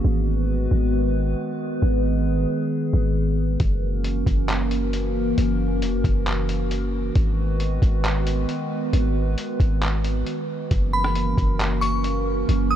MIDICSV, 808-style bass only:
0, 0, Header, 1, 2, 480
1, 0, Start_track
1, 0, Key_signature, 5, "minor"
1, 0, Tempo, 444444
1, 48, Time_signature, 4, 2, 24, 8
1, 13780, End_track
2, 0, Start_track
2, 0, Title_t, "808-style bass"
2, 0, Program_c, 0, 38
2, 48, Note_on_c, 0, 32, 110
2, 739, Note_off_c, 0, 32, 0
2, 769, Note_on_c, 0, 32, 101
2, 1459, Note_off_c, 0, 32, 0
2, 1969, Note_on_c, 0, 32, 112
2, 2659, Note_off_c, 0, 32, 0
2, 3168, Note_on_c, 0, 32, 107
2, 3859, Note_off_c, 0, 32, 0
2, 3888, Note_on_c, 0, 30, 107
2, 4579, Note_off_c, 0, 30, 0
2, 4606, Note_on_c, 0, 30, 98
2, 5764, Note_off_c, 0, 30, 0
2, 5808, Note_on_c, 0, 30, 99
2, 6288, Note_on_c, 0, 28, 96
2, 6304, Note_off_c, 0, 30, 0
2, 6408, Note_on_c, 0, 30, 101
2, 6424, Note_off_c, 0, 28, 0
2, 6522, Note_off_c, 0, 30, 0
2, 6526, Note_on_c, 0, 30, 99
2, 7684, Note_off_c, 0, 30, 0
2, 7728, Note_on_c, 0, 32, 109
2, 8419, Note_off_c, 0, 32, 0
2, 8446, Note_on_c, 0, 32, 101
2, 9138, Note_off_c, 0, 32, 0
2, 9647, Note_on_c, 0, 32, 111
2, 10108, Note_off_c, 0, 32, 0
2, 10366, Note_on_c, 0, 32, 106
2, 11058, Note_off_c, 0, 32, 0
2, 11568, Note_on_c, 0, 30, 107
2, 12259, Note_off_c, 0, 30, 0
2, 12286, Note_on_c, 0, 30, 102
2, 13444, Note_off_c, 0, 30, 0
2, 13487, Note_on_c, 0, 30, 104
2, 13780, Note_off_c, 0, 30, 0
2, 13780, End_track
0, 0, End_of_file